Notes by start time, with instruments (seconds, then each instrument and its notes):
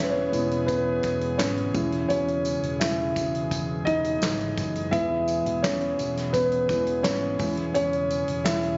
Already playing: fingered electric bass E1, analog synth pad B2 E3 G#3 G#4, grand piano E4 C#5 E5
0.00 grand piano C#4 B4
0.10 grand piano C#4 C#5
0.32 fingered electric bass E1, grand piano G#3 B3 E4, closed hi-hat, tambourine
0.51 closed hi-hat
0.67 grand piano B3 B4, kick, closed hi-hat, tambourine
1.03 fingered electric bass E1, kick, closed hi-hat, tambourine
1.21 closed hi-hat
1.38 fingered electric bass G#1, grand piano C#4 C#5, snare, clap, closed hi-hat, tambourine
1.57 closed hi-hat
1.74 fingered electric bass E1, analog synth pad C#3 E3 G#3, grand piano G#3 C#4 E4, kick, closed hi-hat, tambourine
1.92 closed hi-hat
2.09 fingered electric bass E1, grand piano C#4 C#5, closed hi-hat, tambourine
2.28 closed hi-hat
2.45 closed hi-hat, tambourine
2.62 fingered electric bass E1, closed hi-hat
2.80 grand piano G#3 C#4 E4 E5, snare, clap, closed hi-hat, tambourine
3.16 fingered electric bass E1, kick, closed hi-hat, tambourine
3.35 closed hi-hat
3.51 kick, closed hi-hat, tambourine
3.85 fingered electric bass E1, grand piano D#4 D#5, kick, closed hi-hat
4.04 closed hi-hat
4.21 fingered electric bass G#1, snare, clap, closed hi-hat, tambourine
4.41 closed hi-hat
4.57 fingered electric bass F#1, kick, closed hi-hat, tambourine
4.75 closed hi-hat
4.91 fingered electric bass E1, analog synth pad B2, grand piano G#3 B3 E4 E5, kick, closed hi-hat, tambourine
5.28 closed hi-hat, tambourine
5.45 fingered electric bass E1, closed hi-hat
5.63 grand piano C#4 C#5, snare, clap, closed hi-hat, tambourine
5.81 closed hi-hat
5.99 fingered electric bass E1, closed hi-hat, tambourine
6.17 snare, closed hi-hat
6.33 grand piano B3 B4, kick, closed hi-hat, tambourine
6.52 closed hi-hat
6.69 fingered electric bass E1, grand piano G#3 B3 E4, kick, closed hi-hat, tambourine
6.87 closed hi-hat
7.03 fingered electric bass G#1, grand piano C#4 C#5, snare, clap, closed hi-hat, tambourine
7.39 fingered electric bass E1, analog synth pad C#3, grand piano G#3 C#4 E4, kick, open hi-hat, tambourine
7.57 closed hi-hat
7.74 fingered electric bass E1, grand piano C#4 C#5, closed hi-hat, tambourine
7.93 closed hi-hat
8.10 closed hi-hat, tambourine
8.28 fingered electric bass E1, closed hi-hat
8.44 grand piano E4 E5, snare, clap, closed hi-hat, tambourine
8.63 closed hi-hat